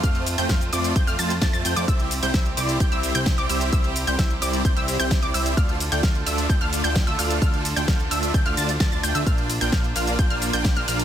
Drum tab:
RD |x-x-x-x-x-x-x-x-|x-x-x-x-x-x-x-x-|x-x-x-x-x-x-x-x-|x-x-x-x-x-x-x-x-|
HH |xxoxxxoxxxoxxxox|xxoxxxoxxxoxxxox|xxoxxxoxxxoxxxox|xxoxxxoxxxoxxxox|
SH |x-xxxxxxxxxxxxxx|x-xxx-xxx-xxx-xx|x-xxx-xxx-xxx-xx|x-xxx-xxx-xxx-xx|
SD |----o-------o---|----o-------o---|----o-------o---|----o-------o---|
BD |o---o---o---o---|o---o---o---o---|o---o---o---o---|o---o---o---o---|

RD |x-x-x-x-x-x-x-x-|x-x-x-x-x-x-x-x-|
HH |xxoxxxoxxxoxxxox|xxoxxxoxxxoxxxox|
SH |x-xxx-xxx-xxxxxx|x-xxx-xxx-xxx-xx|
SD |----o-------o---|----o-------o---|
BD |o---o---o---o---|o---o---o---o---|